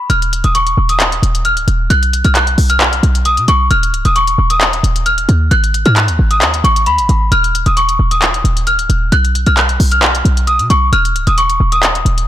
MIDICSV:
0, 0, Header, 1, 4, 480
1, 0, Start_track
1, 0, Tempo, 451128
1, 105, Time_signature, 4, 2, 24, 8
1, 13064, End_track
2, 0, Start_track
2, 0, Title_t, "Celesta"
2, 0, Program_c, 0, 8
2, 104, Note_on_c, 0, 89, 108
2, 450, Note_off_c, 0, 89, 0
2, 471, Note_on_c, 0, 87, 76
2, 557, Note_off_c, 0, 87, 0
2, 583, Note_on_c, 0, 85, 86
2, 929, Note_off_c, 0, 85, 0
2, 953, Note_on_c, 0, 87, 74
2, 1510, Note_off_c, 0, 87, 0
2, 1545, Note_on_c, 0, 89, 80
2, 1996, Note_off_c, 0, 89, 0
2, 2024, Note_on_c, 0, 90, 103
2, 2370, Note_off_c, 0, 90, 0
2, 2390, Note_on_c, 0, 89, 76
2, 2477, Note_off_c, 0, 89, 0
2, 2503, Note_on_c, 0, 90, 91
2, 2849, Note_off_c, 0, 90, 0
2, 2870, Note_on_c, 0, 89, 85
2, 3428, Note_off_c, 0, 89, 0
2, 3465, Note_on_c, 0, 87, 76
2, 3648, Note_off_c, 0, 87, 0
2, 3705, Note_on_c, 0, 85, 80
2, 3888, Note_off_c, 0, 85, 0
2, 3944, Note_on_c, 0, 89, 99
2, 4289, Note_off_c, 0, 89, 0
2, 4313, Note_on_c, 0, 87, 81
2, 4398, Note_off_c, 0, 87, 0
2, 4426, Note_on_c, 0, 85, 83
2, 4771, Note_off_c, 0, 85, 0
2, 4793, Note_on_c, 0, 87, 83
2, 5350, Note_off_c, 0, 87, 0
2, 5384, Note_on_c, 0, 89, 84
2, 5836, Note_off_c, 0, 89, 0
2, 5864, Note_on_c, 0, 90, 99
2, 6210, Note_off_c, 0, 90, 0
2, 6232, Note_on_c, 0, 89, 82
2, 6318, Note_off_c, 0, 89, 0
2, 6345, Note_on_c, 0, 90, 74
2, 6690, Note_off_c, 0, 90, 0
2, 6713, Note_on_c, 0, 87, 76
2, 7044, Note_off_c, 0, 87, 0
2, 7067, Note_on_c, 0, 85, 82
2, 7250, Note_off_c, 0, 85, 0
2, 7307, Note_on_c, 0, 83, 80
2, 7757, Note_off_c, 0, 83, 0
2, 7786, Note_on_c, 0, 89, 105
2, 8131, Note_off_c, 0, 89, 0
2, 8152, Note_on_c, 0, 87, 76
2, 8238, Note_off_c, 0, 87, 0
2, 8266, Note_on_c, 0, 85, 82
2, 8611, Note_off_c, 0, 85, 0
2, 8633, Note_on_c, 0, 87, 76
2, 9190, Note_off_c, 0, 87, 0
2, 9225, Note_on_c, 0, 89, 81
2, 9676, Note_off_c, 0, 89, 0
2, 9707, Note_on_c, 0, 90, 99
2, 10051, Note_off_c, 0, 90, 0
2, 10072, Note_on_c, 0, 89, 78
2, 10158, Note_off_c, 0, 89, 0
2, 10186, Note_on_c, 0, 90, 89
2, 10531, Note_off_c, 0, 90, 0
2, 10553, Note_on_c, 0, 89, 84
2, 11110, Note_off_c, 0, 89, 0
2, 11144, Note_on_c, 0, 87, 73
2, 11328, Note_off_c, 0, 87, 0
2, 11385, Note_on_c, 0, 85, 78
2, 11568, Note_off_c, 0, 85, 0
2, 11626, Note_on_c, 0, 89, 102
2, 11971, Note_off_c, 0, 89, 0
2, 11993, Note_on_c, 0, 87, 77
2, 12079, Note_off_c, 0, 87, 0
2, 12108, Note_on_c, 0, 85, 84
2, 12452, Note_off_c, 0, 85, 0
2, 12474, Note_on_c, 0, 87, 84
2, 13030, Note_off_c, 0, 87, 0
2, 13064, End_track
3, 0, Start_track
3, 0, Title_t, "808-style bass"
3, 0, Program_c, 1, 38
3, 104, Note_on_c, 1, 27, 112
3, 457, Note_off_c, 1, 27, 0
3, 471, Note_on_c, 1, 27, 102
3, 810, Note_off_c, 1, 27, 0
3, 825, Note_on_c, 1, 27, 105
3, 1286, Note_off_c, 1, 27, 0
3, 1305, Note_on_c, 1, 27, 108
3, 1672, Note_on_c, 1, 25, 99
3, 1688, Note_off_c, 1, 27, 0
3, 1779, Note_off_c, 1, 25, 0
3, 1784, Note_on_c, 1, 27, 105
3, 2015, Note_off_c, 1, 27, 0
3, 2024, Note_on_c, 1, 35, 110
3, 2377, Note_off_c, 1, 35, 0
3, 2391, Note_on_c, 1, 35, 105
3, 2730, Note_off_c, 1, 35, 0
3, 2744, Note_on_c, 1, 35, 105
3, 3205, Note_off_c, 1, 35, 0
3, 3224, Note_on_c, 1, 35, 107
3, 3592, Note_on_c, 1, 47, 99
3, 3608, Note_off_c, 1, 35, 0
3, 3699, Note_off_c, 1, 47, 0
3, 3705, Note_on_c, 1, 35, 107
3, 3935, Note_off_c, 1, 35, 0
3, 3944, Note_on_c, 1, 27, 107
3, 4185, Note_on_c, 1, 25, 101
3, 4201, Note_off_c, 1, 27, 0
3, 4306, Note_off_c, 1, 25, 0
3, 4312, Note_on_c, 1, 27, 106
3, 4651, Note_off_c, 1, 27, 0
3, 4664, Note_on_c, 1, 27, 104
3, 5125, Note_off_c, 1, 27, 0
3, 5144, Note_on_c, 1, 27, 102
3, 5605, Note_off_c, 1, 27, 0
3, 5625, Note_on_c, 1, 39, 104
3, 5855, Note_off_c, 1, 39, 0
3, 5865, Note_on_c, 1, 32, 113
3, 6218, Note_off_c, 1, 32, 0
3, 6232, Note_on_c, 1, 44, 113
3, 6473, Note_on_c, 1, 39, 98
3, 6489, Note_off_c, 1, 44, 0
3, 6580, Note_off_c, 1, 39, 0
3, 6586, Note_on_c, 1, 32, 107
3, 6826, Note_on_c, 1, 39, 98
3, 6842, Note_off_c, 1, 32, 0
3, 7054, Note_off_c, 1, 39, 0
3, 7065, Note_on_c, 1, 32, 108
3, 7305, Note_on_c, 1, 39, 97
3, 7321, Note_off_c, 1, 32, 0
3, 7432, Note_on_c, 1, 32, 99
3, 7448, Note_off_c, 1, 39, 0
3, 7539, Note_off_c, 1, 32, 0
3, 7545, Note_on_c, 1, 32, 104
3, 7775, Note_off_c, 1, 32, 0
3, 7785, Note_on_c, 1, 27, 111
3, 8137, Note_off_c, 1, 27, 0
3, 8153, Note_on_c, 1, 27, 108
3, 8491, Note_off_c, 1, 27, 0
3, 8505, Note_on_c, 1, 27, 106
3, 8966, Note_off_c, 1, 27, 0
3, 8985, Note_on_c, 1, 27, 106
3, 9352, Note_on_c, 1, 25, 98
3, 9368, Note_off_c, 1, 27, 0
3, 9459, Note_off_c, 1, 25, 0
3, 9465, Note_on_c, 1, 27, 100
3, 9695, Note_off_c, 1, 27, 0
3, 9706, Note_on_c, 1, 35, 113
3, 10058, Note_off_c, 1, 35, 0
3, 10073, Note_on_c, 1, 35, 100
3, 10411, Note_off_c, 1, 35, 0
3, 10426, Note_on_c, 1, 35, 104
3, 10886, Note_off_c, 1, 35, 0
3, 10905, Note_on_c, 1, 35, 103
3, 11273, Note_on_c, 1, 47, 100
3, 11289, Note_off_c, 1, 35, 0
3, 11380, Note_off_c, 1, 47, 0
3, 11387, Note_on_c, 1, 35, 101
3, 11616, Note_off_c, 1, 35, 0
3, 11625, Note_on_c, 1, 27, 107
3, 11866, Note_on_c, 1, 25, 102
3, 11882, Note_off_c, 1, 27, 0
3, 11986, Note_off_c, 1, 25, 0
3, 11993, Note_on_c, 1, 27, 108
3, 12331, Note_off_c, 1, 27, 0
3, 12345, Note_on_c, 1, 27, 106
3, 12806, Note_off_c, 1, 27, 0
3, 12826, Note_on_c, 1, 27, 103
3, 13064, Note_off_c, 1, 27, 0
3, 13064, End_track
4, 0, Start_track
4, 0, Title_t, "Drums"
4, 104, Note_on_c, 9, 42, 74
4, 211, Note_off_c, 9, 42, 0
4, 236, Note_on_c, 9, 42, 59
4, 343, Note_off_c, 9, 42, 0
4, 350, Note_on_c, 9, 42, 72
4, 456, Note_off_c, 9, 42, 0
4, 468, Note_on_c, 9, 42, 55
4, 575, Note_off_c, 9, 42, 0
4, 584, Note_on_c, 9, 42, 80
4, 690, Note_off_c, 9, 42, 0
4, 709, Note_on_c, 9, 42, 53
4, 815, Note_off_c, 9, 42, 0
4, 949, Note_on_c, 9, 42, 69
4, 1055, Note_off_c, 9, 42, 0
4, 1065, Note_on_c, 9, 39, 108
4, 1065, Note_on_c, 9, 42, 88
4, 1171, Note_off_c, 9, 39, 0
4, 1172, Note_off_c, 9, 42, 0
4, 1195, Note_on_c, 9, 42, 55
4, 1301, Note_off_c, 9, 42, 0
4, 1310, Note_on_c, 9, 42, 70
4, 1416, Note_off_c, 9, 42, 0
4, 1434, Note_on_c, 9, 42, 64
4, 1540, Note_off_c, 9, 42, 0
4, 1541, Note_on_c, 9, 42, 70
4, 1648, Note_off_c, 9, 42, 0
4, 1669, Note_on_c, 9, 42, 55
4, 1776, Note_off_c, 9, 42, 0
4, 1785, Note_on_c, 9, 42, 70
4, 1891, Note_off_c, 9, 42, 0
4, 2024, Note_on_c, 9, 42, 72
4, 2131, Note_off_c, 9, 42, 0
4, 2156, Note_on_c, 9, 42, 59
4, 2263, Note_off_c, 9, 42, 0
4, 2271, Note_on_c, 9, 42, 72
4, 2377, Note_off_c, 9, 42, 0
4, 2389, Note_on_c, 9, 42, 56
4, 2495, Note_off_c, 9, 42, 0
4, 2503, Note_on_c, 9, 42, 81
4, 2504, Note_on_c, 9, 39, 89
4, 2610, Note_off_c, 9, 42, 0
4, 2611, Note_off_c, 9, 39, 0
4, 2629, Note_on_c, 9, 42, 54
4, 2736, Note_off_c, 9, 42, 0
4, 2745, Note_on_c, 9, 46, 88
4, 2851, Note_off_c, 9, 46, 0
4, 2869, Note_on_c, 9, 42, 72
4, 2975, Note_off_c, 9, 42, 0
4, 2985, Note_on_c, 9, 39, 107
4, 2985, Note_on_c, 9, 42, 85
4, 3091, Note_off_c, 9, 39, 0
4, 3091, Note_off_c, 9, 42, 0
4, 3114, Note_on_c, 9, 42, 54
4, 3221, Note_off_c, 9, 42, 0
4, 3228, Note_on_c, 9, 42, 69
4, 3334, Note_off_c, 9, 42, 0
4, 3352, Note_on_c, 9, 42, 62
4, 3458, Note_off_c, 9, 42, 0
4, 3460, Note_on_c, 9, 42, 71
4, 3567, Note_off_c, 9, 42, 0
4, 3589, Note_on_c, 9, 42, 56
4, 3696, Note_off_c, 9, 42, 0
4, 3703, Note_on_c, 9, 42, 68
4, 3810, Note_off_c, 9, 42, 0
4, 3943, Note_on_c, 9, 42, 74
4, 4050, Note_off_c, 9, 42, 0
4, 4077, Note_on_c, 9, 42, 58
4, 4183, Note_off_c, 9, 42, 0
4, 4190, Note_on_c, 9, 42, 73
4, 4297, Note_off_c, 9, 42, 0
4, 4310, Note_on_c, 9, 42, 55
4, 4416, Note_off_c, 9, 42, 0
4, 4423, Note_on_c, 9, 42, 80
4, 4530, Note_off_c, 9, 42, 0
4, 4548, Note_on_c, 9, 42, 53
4, 4655, Note_off_c, 9, 42, 0
4, 4789, Note_on_c, 9, 42, 72
4, 4895, Note_off_c, 9, 42, 0
4, 4906, Note_on_c, 9, 39, 110
4, 4906, Note_on_c, 9, 42, 87
4, 5012, Note_off_c, 9, 39, 0
4, 5012, Note_off_c, 9, 42, 0
4, 5035, Note_on_c, 9, 42, 55
4, 5142, Note_off_c, 9, 42, 0
4, 5150, Note_on_c, 9, 42, 73
4, 5256, Note_off_c, 9, 42, 0
4, 5275, Note_on_c, 9, 42, 66
4, 5381, Note_off_c, 9, 42, 0
4, 5383, Note_on_c, 9, 42, 72
4, 5489, Note_off_c, 9, 42, 0
4, 5510, Note_on_c, 9, 42, 57
4, 5617, Note_off_c, 9, 42, 0
4, 5626, Note_on_c, 9, 42, 67
4, 5732, Note_off_c, 9, 42, 0
4, 5865, Note_on_c, 9, 42, 75
4, 5972, Note_off_c, 9, 42, 0
4, 5998, Note_on_c, 9, 42, 61
4, 6104, Note_off_c, 9, 42, 0
4, 6110, Note_on_c, 9, 42, 74
4, 6217, Note_off_c, 9, 42, 0
4, 6230, Note_on_c, 9, 42, 55
4, 6336, Note_off_c, 9, 42, 0
4, 6344, Note_on_c, 9, 42, 82
4, 6346, Note_on_c, 9, 39, 89
4, 6451, Note_off_c, 9, 42, 0
4, 6452, Note_off_c, 9, 39, 0
4, 6471, Note_on_c, 9, 42, 55
4, 6577, Note_off_c, 9, 42, 0
4, 6710, Note_on_c, 9, 42, 70
4, 6817, Note_off_c, 9, 42, 0
4, 6827, Note_on_c, 9, 39, 112
4, 6827, Note_on_c, 9, 42, 86
4, 6933, Note_off_c, 9, 39, 0
4, 6933, Note_off_c, 9, 42, 0
4, 6955, Note_on_c, 9, 42, 56
4, 7062, Note_off_c, 9, 42, 0
4, 7071, Note_on_c, 9, 42, 71
4, 7177, Note_off_c, 9, 42, 0
4, 7196, Note_on_c, 9, 42, 64
4, 7302, Note_off_c, 9, 42, 0
4, 7303, Note_on_c, 9, 42, 69
4, 7409, Note_off_c, 9, 42, 0
4, 7431, Note_on_c, 9, 42, 54
4, 7538, Note_off_c, 9, 42, 0
4, 7545, Note_on_c, 9, 42, 65
4, 7652, Note_off_c, 9, 42, 0
4, 7786, Note_on_c, 9, 42, 73
4, 7892, Note_off_c, 9, 42, 0
4, 7918, Note_on_c, 9, 42, 58
4, 8025, Note_off_c, 9, 42, 0
4, 8033, Note_on_c, 9, 42, 74
4, 8139, Note_off_c, 9, 42, 0
4, 8151, Note_on_c, 9, 42, 56
4, 8258, Note_off_c, 9, 42, 0
4, 8266, Note_on_c, 9, 42, 81
4, 8372, Note_off_c, 9, 42, 0
4, 8392, Note_on_c, 9, 42, 55
4, 8498, Note_off_c, 9, 42, 0
4, 8631, Note_on_c, 9, 42, 75
4, 8738, Note_off_c, 9, 42, 0
4, 8747, Note_on_c, 9, 39, 106
4, 8747, Note_on_c, 9, 42, 85
4, 8854, Note_off_c, 9, 39, 0
4, 8854, Note_off_c, 9, 42, 0
4, 8876, Note_on_c, 9, 42, 54
4, 8982, Note_off_c, 9, 42, 0
4, 8990, Note_on_c, 9, 42, 71
4, 9097, Note_off_c, 9, 42, 0
4, 9116, Note_on_c, 9, 42, 64
4, 9222, Note_off_c, 9, 42, 0
4, 9223, Note_on_c, 9, 42, 70
4, 9330, Note_off_c, 9, 42, 0
4, 9351, Note_on_c, 9, 42, 56
4, 9458, Note_off_c, 9, 42, 0
4, 9466, Note_on_c, 9, 42, 67
4, 9572, Note_off_c, 9, 42, 0
4, 9705, Note_on_c, 9, 42, 74
4, 9812, Note_off_c, 9, 42, 0
4, 9838, Note_on_c, 9, 42, 59
4, 9944, Note_off_c, 9, 42, 0
4, 9951, Note_on_c, 9, 42, 74
4, 10057, Note_off_c, 9, 42, 0
4, 10070, Note_on_c, 9, 42, 55
4, 10177, Note_off_c, 9, 42, 0
4, 10184, Note_on_c, 9, 42, 84
4, 10186, Note_on_c, 9, 39, 91
4, 10291, Note_off_c, 9, 42, 0
4, 10292, Note_off_c, 9, 39, 0
4, 10311, Note_on_c, 9, 42, 54
4, 10418, Note_off_c, 9, 42, 0
4, 10427, Note_on_c, 9, 46, 88
4, 10533, Note_off_c, 9, 46, 0
4, 10550, Note_on_c, 9, 42, 73
4, 10656, Note_off_c, 9, 42, 0
4, 10666, Note_on_c, 9, 39, 108
4, 10666, Note_on_c, 9, 42, 86
4, 10773, Note_off_c, 9, 39, 0
4, 10773, Note_off_c, 9, 42, 0
4, 10797, Note_on_c, 9, 42, 56
4, 10903, Note_off_c, 9, 42, 0
4, 10910, Note_on_c, 9, 42, 70
4, 11017, Note_off_c, 9, 42, 0
4, 11035, Note_on_c, 9, 42, 63
4, 11142, Note_off_c, 9, 42, 0
4, 11143, Note_on_c, 9, 42, 69
4, 11250, Note_off_c, 9, 42, 0
4, 11271, Note_on_c, 9, 42, 55
4, 11378, Note_off_c, 9, 42, 0
4, 11386, Note_on_c, 9, 42, 68
4, 11492, Note_off_c, 9, 42, 0
4, 11626, Note_on_c, 9, 42, 76
4, 11733, Note_off_c, 9, 42, 0
4, 11758, Note_on_c, 9, 42, 59
4, 11865, Note_off_c, 9, 42, 0
4, 11871, Note_on_c, 9, 42, 72
4, 11978, Note_off_c, 9, 42, 0
4, 11991, Note_on_c, 9, 42, 57
4, 12097, Note_off_c, 9, 42, 0
4, 12105, Note_on_c, 9, 42, 82
4, 12211, Note_off_c, 9, 42, 0
4, 12231, Note_on_c, 9, 42, 55
4, 12338, Note_off_c, 9, 42, 0
4, 12471, Note_on_c, 9, 42, 75
4, 12577, Note_off_c, 9, 42, 0
4, 12588, Note_on_c, 9, 39, 109
4, 12588, Note_on_c, 9, 42, 86
4, 12694, Note_off_c, 9, 39, 0
4, 12694, Note_off_c, 9, 42, 0
4, 12717, Note_on_c, 9, 42, 53
4, 12823, Note_off_c, 9, 42, 0
4, 12831, Note_on_c, 9, 42, 70
4, 12938, Note_off_c, 9, 42, 0
4, 12957, Note_on_c, 9, 42, 64
4, 13063, Note_off_c, 9, 42, 0
4, 13064, End_track
0, 0, End_of_file